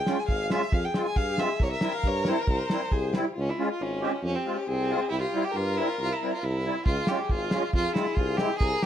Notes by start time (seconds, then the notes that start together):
Already playing: G#4 G5
0.06 G#3 C#4 F4, snare
0.20 G#5
0.28 G#1 F5, kick
0.50 G#3 C#4 F4 E5, snare
0.72 F2 G#4 F5, kick
0.85 G5
0.94 G#3 C4 F4, snare
1.05 G#5
1.16 G2 F5, kick
1.38 G#3 C4 F4 E5, snare
1.60 C2 A#4 C#5, kick
1.72 E5
1.81 G3 C4 E4, snare
1.94 F5
2.03 G2, kick
2.08 C#5
2.25 G3 C4 E4 C5, snare
2.42 A#4
2.47 C2, kick
2.52 C5
2.70 G3 C4 E4, snare
2.91 C2 G#4, kick
3.12 G3 C4 E4 G4, snare
3.36 C#2 F4
3.40 C#4
3.49 E4
3.58 G#3 C#4 F4
3.72 F4
3.80 G#1 C#4
4.01 G#3 C4 C#4 G4
4.13 C#4
4.23 F2 C#4 G4
4.35 C4
4.46 G#3 C4 F4
4.57 C#4
4.67 C2 C4 G#4
4.90 G#3 C4 F4
5.10 C2 E4 G4
5.21 F4
5.34 G3 C4 E4
5.44 G4
5.51 G2 A#4
5.56 F4
5.77 G3 C4 E4
5.88 F4
5.98 C2 F4
6.12 E4
6.22 G3 C4 E4
6.34 F4
6.43 C2 E4
6.65 G3 C4 E4
6.84 C#2 F4 G#4, kick
7.07 G#3 C#4 F4 G4, snare
7.24 G4
7.29 G#1 F4, kick
7.51 G#3 C#4 F4, snare
7.73 F2 F4 G#4, kick
7.95 G#3 C4 E4 F4, snare
8.06 snare
8.15 C2 F4, kick
8.37 G#3 C4 E4 G4, snare
8.58 C2 G#4, kick
8.62 A#4
8.82 G4, snare